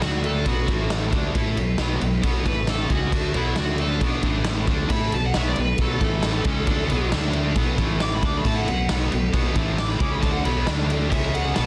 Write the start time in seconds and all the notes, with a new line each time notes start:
0.02 D2 D3 A3 D4 F#4, snare, crash
0.24 A4, crash
0.46 B1 B2 F#3 B3 F#4, kick, crash
0.68 A1 A2 E3 A3, kick, crash
0.90 snare, crash
1.13 D2 D3 A3 D4, kick, crash
1.35 A2 A3 E4 A4, kick, crash
1.57 B1 B2 F#3, crash
1.78 B1 B2 F#3, snare, crash
1.82 B3
2.01 B1 B2 F#3, crash
2.23 B1 B2 F#3 B3, kick, crash
2.46 A1 A2 E3 A3 B4, kick, crash
2.67 A4, snare, crash
2.90 C#2 C#3 G#3 C#4 F#4, kick, crash
3.12 D2 D3 A3 D4, kick, crash
3.34 B1 B2 F#3 B3 E4, crash
3.56 D2 D3 A3 D4 F#4, snare, crash
3.78 A4, crash
4.01 B1 B2 F#3 B3 D4, kick, crash
4.23 A1 A2 E3 A3, kick, crash
4.45 snare, crash
4.67 D2 D3 A3 D4, kick, crash
4.90 A2 A3 E4 A4 B5, kick, crash
5.12 B1 B2 F#3 A5, crash
5.26 F#5
5.34 B1 B2 F#3 B3 E5, snare, crash
5.49 D5
5.56 B1 B2 F#3, crash
5.60 B4
5.78 B1 B2 F#3 A4, kick, crash
5.82 B3
6.01 A1 A2 E3 A3, kick, crash
6.23 snare, crash
6.44 C#2 C#3 G#3 C#4, kick, crash
6.67 D2 D3 A3 D4, kick, crash
6.90 B1 B2 F#3 B3, crash
7.12 D2 D3 A3 D4, snare, crash
7.33 crash
7.56 B1 B2 F#3 B3, kick, crash
7.78 A1 A2 E3 A3, kick, crash
8.00 D6, snare, crash
8.14 B5
8.23 D2 D3 A3 D4 D6, kick, crash
8.37 B5
8.45 A2 A3 E4 A4 A5, kick, crash
8.56 F#5
8.66 B1 B2 F#3 F#5, crash
8.89 B1 B2 F#3 B3, snare, crash
9.12 B1 B2 F#3, crash
9.33 B1 B2 F#3 B3, kick, crash
9.55 A1 A2 E3 A3, kick, crash
9.78 D6, snare, crash
9.89 B5
10.00 C#2 C#3 G#3 C#4 D6, kick, crash
10.12 B5
10.22 D2 D3 A3 D4 A5, kick, crash
10.31 F#5
10.44 B1 B2 F#3 B3 B5, crash
10.67 D2 D3 A3 D4, snare, crash
10.90 crash
11.11 C#2 C#3 G#3 C#4 E5, kick, crash
11.34 F#5, crash
11.55 B1 B2 F#3 B3 A5, snare, crash